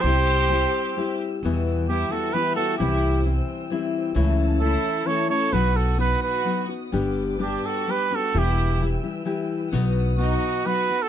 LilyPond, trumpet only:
\new Staff \with { instrumentName = "Trumpet" } { \time 3/4 \key c \major \tempo 4 = 130 c''2~ c''8 r8 | \key e \minor r4 g'8 a'8 b'8 a'8 | g'4 r2 | r4 a'4 cis''8 cis''8 |
b'8 a'8 b'8 b'4 r8 | r4 g'8 a'8 b'8 a'8 | g'4 r2 | r4 fis'4 b'8. a'16 | }